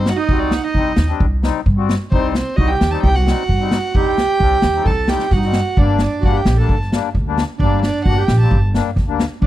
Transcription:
0.00 0.11 G2 medium
0.00 0.12 G3 medium
0.00 0.12 C4 medium
0.00 0.12 D#4 medium
0.00 0.11 C5 medium
0.06 0.18 F#5 medium
0.06 snare medium
0.10 0.18 F#4 medium
0.16 0.62 D#4 medium
0.16 0.41 D#5 medium
0.29 0.56 C2 medium
0.29 0.52 G3 medium
0.29 0.52 C4 medium
0.29 0.53 F#4 medium
0.29 kick medium
0.40 0.55 D5 medium
0.51 snare medium
0.55 0.66 F#5 medium
0.63 1.06 D#4 medium
0.63 1.10 D#5 medium
0.74 0.88 C2 medium
0.74 0.93 G3 medium
0.74 0.93 C4 medium
0.74 0.93 D#4 medium
0.74 kick medium
0.96 1.11 D#2 medium
0.96 snare loud
1.08 1.26 G3 medium
1.08 1.26 C4 medium
1.08 1.26 D4 medium
1.20 1.48 C2 medium
1.20 kick medium
1.42 1.60 G3 medium
1.42 1.60 C4 medium
1.42 1.61 D#4 medium
1.42 snare medium
1.66 1.94 G2 medium
1.66 kick medium
1.77 1.95 G3 medium
1.77 1.95 C4 medium
1.77 1.95 F#4 medium
1.89 snare medium
2.11 2.39 C2 medium
2.11 2.35 G3 medium
2.11 2.35 C4 medium
2.11 2.36 D#4 medium
2.11 2.33 C5 medium
2.11 kick medium
2.34 2.55 C4 medium
2.34 2.58 C5 medium
2.34 snare medium
2.56 2.72 C2 loud
2.56 2.75 G3 medium
2.56 2.75 C4 medium
2.56 2.70 D#4 medium
2.56 2.59 F#4 soft
2.56 2.76 F#4 medium
2.56 2.69 D#5 loud
2.56 kick medium
2.67 3.03 G4 medium
2.67 2.92 G5 loud
2.81 2.95 D#2 medium
2.81 snare loud
2.90 3.08 G3 medium
2.90 3.09 C4 medium
2.90 3.09 D#4 medium
2.90 3.02 A5 medium
3.03 3.31 C2 loud
3.03 3.15 G4 medium
3.03 3.17 G5 loud
3.03 kick medium
3.15 3.70 F#4 medium
3.15 3.96 F#5 medium
3.15 snare soft
3.25 3.43 G3 medium
3.25 3.43 C4 medium
3.25 3.44 D#4 medium
3.25 snare medium
3.49 3.76 G2 medium
3.49 kick medium
3.59 3.77 G3 medium
3.59 3.78 C4 medium
3.59 3.78 D#4 medium
3.71 3.93 F#4 medium
3.71 snare loud
3.94 4.22 C2 medium
3.94 4.17 G3 medium
3.94 4.18 C4 medium
3.94 4.18 D#4 medium
3.94 4.83 G4 loud
3.94 4.07 F#5 loud
3.94 kick medium
4.07 4.88 G5 loud
4.18 snare medium
4.40 4.54 C2 medium
4.40 4.58 G3 medium
4.40 4.58 C4 medium
4.40 4.58 D4 medium
4.40 kick medium
4.62 4.77 D#2 medium
4.62 snare loud
4.74 4.92 G3 medium
4.74 4.92 C4 medium
4.74 4.92 D#4 medium
4.84 5.13 C2 medium
4.84 5.09 A4 loud
4.84 5.10 A5 medium
4.84 kick medium
5.08 5.26 G3 medium
5.08 5.26 C4 medium
5.08 5.26 D#4 medium
5.08 5.32 G4 medium
5.08 5.34 G5 medium
5.08 snare medium
5.19 snare medium
5.30 5.59 G2 medium
5.30 5.38 F#4 medium
5.30 5.80 F#5 medium
5.30 kick medium
5.30 snare soft
5.36 5.45 D#4 medium
5.42 5.60 G3 medium
5.42 5.61 C4 medium
5.42 5.61 D#4 medium
5.42 5.77 F#4 medium
5.42 snare soft
5.53 snare medium
5.77 6.05 G1 medium
5.77 6.00 G3 medium
5.77 6.01 A#3 medium
5.77 5.98 D4 medium
5.77 6.01 D4 medium
5.77 6.01 D5 medium
5.77 kick medium
5.99 6.24 D4 medium
5.99 6.27 D5 medium
5.99 snare medium
6.21 6.37 G1 medium
6.21 6.41 G3 medium
6.21 6.41 A#3 medium
6.21 6.41 D4 medium
6.21 6.33 F#4 medium
6.21 kick medium
6.26 6.39 F#5 medium
6.32 6.57 G4 medium
6.37 6.59 G5 medium
6.45 6.59 A#1 loud
6.45 snare loud
6.57 6.75 G3 medium
6.57 6.75 A#3 medium
6.57 6.75 D4 medium
6.57 6.78 A4 medium
6.57 6.80 A5 medium
6.69 6.96 G1 medium
6.69 kick medium
6.81 snare soft
6.92 7.09 G3 medium
6.92 7.09 A#3 medium
6.92 7.09 D4 medium
6.92 snare medium
7.14 7.42 D2 medium
7.14 kick medium
7.26 7.43 G3 medium
7.26 7.43 A#3 medium
7.26 7.44 D4 medium
7.38 snare medium
7.58 7.87 G1 medium
7.58 7.83 G3 medium
7.58 7.83 A#3 medium
7.58 7.80 D4 medium
7.58 7.84 D4 medium
7.58 7.81 D5 medium
7.58 kick medium
7.82 8.06 D4 medium
7.82 8.03 D5 medium
7.82 snare medium
7.94 snare soft
8.04 8.19 G1 medium
8.04 8.23 G3 medium
8.04 8.23 A#3 medium
8.04 8.23 D4 medium
8.04 8.17 F#4 medium
8.04 8.20 F#5 medium
8.04 kick medium
8.18 8.60 G4 medium
8.18 8.40 G5 medium
8.28 8.42 A#1 medium
8.28 snare medium
8.40 8.57 G3 medium
8.40 8.57 A#3 medium
8.40 8.58 C4 medium
8.40 8.61 A5 medium
8.51 8.78 G1 loud
8.51 kick medium
8.73 8.90 G3 medium
8.73 8.91 A#3 medium
8.73 8.91 D4 medium
8.73 snare medium
8.96 9.23 D2 medium
8.96 kick medium
8.96 snare soft
9.08 9.25 G3 medium
9.08 9.25 A#3 medium
9.08 9.25 D4 medium
9.20 snare medium
9.42 9.47 D2 medium
9.42 9.47 F#3 medium
9.42 9.47 A3 medium
9.42 9.47 D4 medium
9.42 kick medium

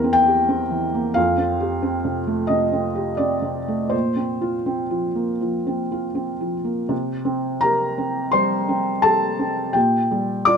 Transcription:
0.00 1.19 E2 medium
0.00 0.71 E3 medium
0.00 0.94 A#3 soft
0.00 0.04 C4 medium
0.00 0.41 C4 medium
0.00 0.26 G4 medium
0.00 0.14 A#4 medium
0.00 1.19 C5 medium
0.13 1.16 G5 loud
0.26 0.62 G4 medium
0.49 0.85 C4 medium
0.71 1.07 E3 soft
0.94 1.17 A#3 soft
1.14 2.46 F2 medium
1.14 2.49 F5 medium
1.38 1.74 C4 soft
1.60 1.96 G4 medium
1.82 2.18 C4 medium
2.05 2.41 C3 soft
2.27 2.64 A3 soft
2.47 2.87 C3 soft
2.47 3.18 D#5 medium
2.72 3.10 C4 soft
2.95 3.34 G4 soft
3.17 3.58 C4 soft
3.17 3.91 D5 medium
3.42 3.82 C3 soft
3.68 3.93 A3 soft
3.89 5.37 A#2 medium
3.89 6.52 C5 medium
4.16 4.56 C4 soft
4.41 4.81 F4 soft
4.66 5.06 C4 soft
4.90 5.31 F3 soft
5.15 5.57 A#3 soft
5.41 5.82 F3 soft
5.67 6.07 C4 soft
5.92 6.31 F4 soft
6.15 6.56 C4 soft
6.41 6.81 F3 soft
6.64 6.90 A#3 soft
6.89 8.29 C3 medium
7.25 7.84 C4 medium
7.61 8.20 G4 medium
7.61 8.30 A#4 medium
7.61 8.33 A#5 loud
7.98 8.55 C4 soft
8.31 8.90 G3 medium
8.31 8.99 C5 medium
8.31 9.03 C6 medium
8.69 9.25 C4 medium
9.02 9.60 G4 medium
9.02 9.70 A4 medium
9.02 9.74 A5 loud
9.39 9.75 C4 medium
9.73 10.57 A#2 medium
9.73 10.43 G4 medium
9.73 10.47 G5 medium
10.11 10.57 G3 medium
10.45 10.57 F4 medium
10.45 10.57 D5 medium
10.45 10.57 D6 loud

